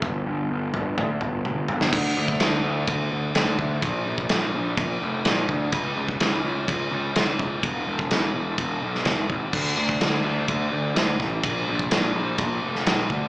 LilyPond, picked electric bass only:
\new Staff \with { instrumentName = "Picked electric bass" } { \clef bass \time 4/4 \key d \minor \tempo 4 = 126 g,,8 g,,8 g,,8 g,,8 d,8 g,,8 g,,8 g,,8 | d,8 d,8 d,8 d,8 d,8 d,8 d,8 d,8 | bes,,8 bes,,8 bes,,8 bes,,8 bes,,8 f,,8 bes,,8 d,8 | cis,8 cis,8 cis,8 cis,8 cis,8 cis,8 cis,8 cis,8 |
e,,8 e,,8 e,,8 e,,8 e,,8 b,,8 e,,8 gis,,8 | d,8 d,8 d,8 d,8 d,8 d,8 d,8 a,,8 | bes,,8 bes,,8 bes,,8 bes,,8 bes,,8 f,,8 bes,,8 d,8 | }